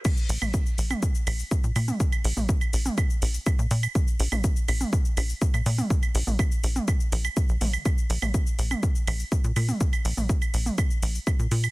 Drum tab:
CC |x---------------|----------------|----------------|----------------|
HH |--o---o---o---o-|--o---o---o---o-|--o---o---o---o-|--o---o---o---o-|
SH |xxxxxxxxxxxxxxxx|xxxxxxxxxxxxxxxx|xxxxxxxxxxxxxxxx|xxxxxxxxxxxxxxxx|
CL |x--x---x--x---x-|-x---x--x---x--x|---x--x---x--x--|-x--x---x--x---x|
T2 |---o---o-------o|---o---o--------|---o---o-------o|---o---o------o-|
BD |o---o---o---o---|o---o---o---o---|o---o---o---o---|o---o---o---o---|

CC |----------------|----------------|
HH |--o---o---o---o-|--o---o---o---o-|
SH |xxxxxxxxxxxxxxxx|xxxxxxxxxxxxxxxx|
CL |x--x---x--x---x-|-x---x--x---x--x|
T2 |---o---o-------o|---o---o--------|
BD |o---o---o---o---|o---o---o---o---|